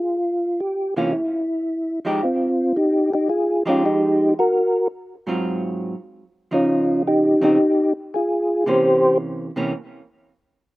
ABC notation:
X:1
M:4/4
L:1/8
Q:"Swing" 1/4=112
K:Fm
V:1 name="Tonewheel organ"
F2 G F =E3 z | [CF]2 [EG] [EG] [FA] [DF] [EG]2 | [_GB]2 z6 | [DF]2 [EG] [EG]2 z [FA]2 |
[Gc]2 z6 |]
V:2 name="Hollow-body jazz guitar" clef=bass
z3 [C,=E,B,D] z3 [F,A,_EG] | z4 z [F,A,EG]3 | z3 [A,,_G,CF]3 z2 | [D,F,E]3 [D,F,CE] z4 |
[C,=E,B,D]3 [C,E,B,D] z4 |]